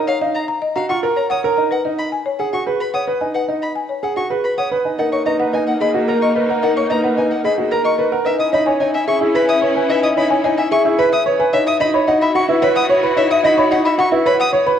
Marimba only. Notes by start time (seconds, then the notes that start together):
Already playing: A#5
0.08 C#5
0.22 F5
0.48 A#5
0.62 D#5
0.76 A#5
0.89 F#5
1.03 A#4
1.17 C#5
1.30 F#5
1.43 C#5
1.57 A#5
1.71 B4
1.85 D#5
2.12 G#5
2.26 C#5
2.39 G#5
2.53 F#5
2.67 G#4
2.80 B4
2.94 F#5
3.07 B4
3.21 G#5
3.35 B4
3.49 D#5
3.76 G#5
3.89 C#5
4.03 G#5
4.16 F#5
4.30 G#4
4.44 B4
4.58 F#5
4.71 B4
4.85 G#5
4.99 A#4
5.12 C#5
5.26 B4
5.40 F#5
5.53 B4
5.68 F#5
5.81 D#5
5.95 G#4
6.09 A#4
6.22 D#5
6.36 A#4
6.50 F#5
6.63 A#4
6.77 C#5
6.90 B4
7.04 F#5
7.18 B4
7.31 F#5
7.45 D#5
7.58 G#4
7.71 A#4
7.85 D#5
7.98 A#4
8.12 F#5
8.25 B4
8.39 D#5
8.53 C#5
8.66 G#5
8.81 C#5
8.95 G#5
9.08 E5
9.22 G#4
9.36 B4
9.49 E5
9.63 B4
9.77 G#5
9.90 B4
10.03 D#5
10.17 C#5
10.30 G#5
10.44 C#5
10.58 G#5
10.72 E5
10.86 G#4
10.99 B4
11.13 E5
11.27 B4
11.40 G#5
11.53 C#5
11.67 E5
11.81 D#5
11.94 B5
12.08 D#5
12.22 B5
12.36 F#5
12.49 B4
12.63 C#5
12.76 F#5
12.90 C#5
13.03 B5
13.17 C#5
13.31 E5
13.45 D#5
13.58 B5
13.71 D#5
13.85 B5
13.99 F#5
14.12 B4
14.26 C#5
14.40 F#5
14.53 C#5
14.67 B5